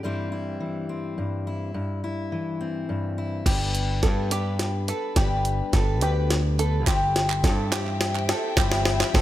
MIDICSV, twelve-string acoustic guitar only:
0, 0, Header, 1, 2, 480
1, 0, Start_track
1, 0, Key_signature, 1, "major"
1, 0, Tempo, 569801
1, 29, Time_signature, 6, 3, 24, 8
1, 7764, End_track
2, 0, Start_track
2, 0, Title_t, "Twelve-string acoustic guitar"
2, 0, Program_c, 0, 25
2, 2919, Note_on_c, 0, 43, 67
2, 2922, Note_on_c, 0, 50, 61
2, 2926, Note_on_c, 0, 55, 57
2, 2930, Note_on_c, 0, 62, 71
2, 2931, Note_on_c, 0, 59, 68
2, 2935, Note_on_c, 0, 71, 66
2, 3387, Note_off_c, 0, 55, 0
2, 3391, Note_off_c, 0, 59, 0
2, 3391, Note_on_c, 0, 55, 53
2, 3397, Note_off_c, 0, 43, 0
2, 3398, Note_off_c, 0, 62, 0
2, 3399, Note_off_c, 0, 50, 0
2, 3401, Note_on_c, 0, 59, 58
2, 3406, Note_off_c, 0, 71, 0
2, 3408, Note_on_c, 0, 62, 64
2, 3419, Note_on_c, 0, 71, 59
2, 3626, Note_off_c, 0, 71, 0
2, 3632, Note_off_c, 0, 62, 0
2, 3633, Note_off_c, 0, 55, 0
2, 3636, Note_on_c, 0, 71, 65
2, 3638, Note_off_c, 0, 59, 0
2, 3643, Note_on_c, 0, 62, 57
2, 3647, Note_on_c, 0, 59, 53
2, 3649, Note_on_c, 0, 55, 58
2, 3652, Note_on_c, 0, 50, 53
2, 3655, Note_on_c, 0, 43, 46
2, 4100, Note_off_c, 0, 71, 0
2, 4110, Note_on_c, 0, 71, 53
2, 4112, Note_off_c, 0, 62, 0
2, 4121, Note_off_c, 0, 59, 0
2, 4122, Note_on_c, 0, 62, 49
2, 4124, Note_off_c, 0, 50, 0
2, 4125, Note_off_c, 0, 43, 0
2, 4131, Note_on_c, 0, 59, 47
2, 4134, Note_off_c, 0, 55, 0
2, 4138, Note_on_c, 0, 55, 44
2, 4349, Note_on_c, 0, 43, 72
2, 4350, Note_off_c, 0, 55, 0
2, 4353, Note_off_c, 0, 59, 0
2, 4353, Note_off_c, 0, 71, 0
2, 4353, Note_on_c, 0, 50, 73
2, 4355, Note_off_c, 0, 62, 0
2, 4361, Note_on_c, 0, 55, 74
2, 4363, Note_on_c, 0, 59, 81
2, 4366, Note_on_c, 0, 62, 80
2, 4368, Note_on_c, 0, 71, 73
2, 4820, Note_off_c, 0, 55, 0
2, 4823, Note_on_c, 0, 55, 56
2, 4825, Note_off_c, 0, 59, 0
2, 4829, Note_off_c, 0, 62, 0
2, 4832, Note_off_c, 0, 43, 0
2, 4834, Note_off_c, 0, 50, 0
2, 4835, Note_on_c, 0, 59, 65
2, 4840, Note_on_c, 0, 62, 69
2, 4841, Note_off_c, 0, 71, 0
2, 4851, Note_on_c, 0, 71, 66
2, 5057, Note_off_c, 0, 71, 0
2, 5063, Note_off_c, 0, 62, 0
2, 5065, Note_off_c, 0, 59, 0
2, 5067, Note_on_c, 0, 71, 68
2, 5069, Note_off_c, 0, 55, 0
2, 5073, Note_on_c, 0, 62, 66
2, 5075, Note_on_c, 0, 59, 67
2, 5080, Note_on_c, 0, 50, 57
2, 5080, Note_on_c, 0, 55, 56
2, 5085, Note_on_c, 0, 43, 54
2, 5534, Note_off_c, 0, 71, 0
2, 5544, Note_on_c, 0, 71, 54
2, 5546, Note_off_c, 0, 62, 0
2, 5550, Note_off_c, 0, 59, 0
2, 5556, Note_on_c, 0, 62, 50
2, 5557, Note_off_c, 0, 50, 0
2, 5559, Note_off_c, 0, 43, 0
2, 5560, Note_on_c, 0, 59, 51
2, 5566, Note_off_c, 0, 55, 0
2, 5569, Note_on_c, 0, 55, 45
2, 5783, Note_off_c, 0, 55, 0
2, 5785, Note_on_c, 0, 43, 78
2, 5789, Note_off_c, 0, 71, 0
2, 5791, Note_on_c, 0, 52, 75
2, 5793, Note_on_c, 0, 55, 76
2, 5794, Note_off_c, 0, 59, 0
2, 5795, Note_off_c, 0, 62, 0
2, 5797, Note_on_c, 0, 60, 79
2, 5799, Note_on_c, 0, 64, 82
2, 5803, Note_on_c, 0, 67, 89
2, 6256, Note_off_c, 0, 55, 0
2, 6258, Note_off_c, 0, 60, 0
2, 6260, Note_on_c, 0, 55, 68
2, 6266, Note_off_c, 0, 64, 0
2, 6268, Note_off_c, 0, 43, 0
2, 6268, Note_on_c, 0, 60, 67
2, 6271, Note_off_c, 0, 52, 0
2, 6276, Note_on_c, 0, 64, 65
2, 6280, Note_off_c, 0, 67, 0
2, 6283, Note_on_c, 0, 67, 69
2, 6499, Note_off_c, 0, 67, 0
2, 6502, Note_off_c, 0, 64, 0
2, 6506, Note_off_c, 0, 55, 0
2, 6506, Note_off_c, 0, 60, 0
2, 6509, Note_on_c, 0, 67, 73
2, 6512, Note_on_c, 0, 64, 72
2, 6516, Note_on_c, 0, 60, 65
2, 6520, Note_on_c, 0, 55, 64
2, 6522, Note_on_c, 0, 52, 64
2, 6528, Note_on_c, 0, 43, 54
2, 6979, Note_off_c, 0, 67, 0
2, 6982, Note_off_c, 0, 64, 0
2, 6982, Note_on_c, 0, 67, 62
2, 6991, Note_off_c, 0, 60, 0
2, 6992, Note_on_c, 0, 64, 57
2, 6996, Note_off_c, 0, 52, 0
2, 6999, Note_off_c, 0, 43, 0
2, 7001, Note_on_c, 0, 60, 51
2, 7004, Note_off_c, 0, 55, 0
2, 7007, Note_on_c, 0, 55, 51
2, 7217, Note_off_c, 0, 55, 0
2, 7219, Note_off_c, 0, 60, 0
2, 7219, Note_on_c, 0, 43, 72
2, 7220, Note_off_c, 0, 64, 0
2, 7221, Note_on_c, 0, 52, 90
2, 7226, Note_off_c, 0, 67, 0
2, 7228, Note_on_c, 0, 55, 86
2, 7229, Note_on_c, 0, 60, 78
2, 7230, Note_on_c, 0, 64, 89
2, 7237, Note_on_c, 0, 67, 93
2, 7687, Note_off_c, 0, 55, 0
2, 7697, Note_off_c, 0, 60, 0
2, 7697, Note_on_c, 0, 55, 65
2, 7703, Note_off_c, 0, 43, 0
2, 7704, Note_off_c, 0, 52, 0
2, 7706, Note_off_c, 0, 64, 0
2, 7707, Note_on_c, 0, 60, 67
2, 7712, Note_off_c, 0, 67, 0
2, 7716, Note_on_c, 0, 64, 73
2, 7725, Note_on_c, 0, 67, 76
2, 7764, Note_off_c, 0, 55, 0
2, 7764, Note_off_c, 0, 60, 0
2, 7764, Note_off_c, 0, 64, 0
2, 7764, Note_off_c, 0, 67, 0
2, 7764, End_track
0, 0, End_of_file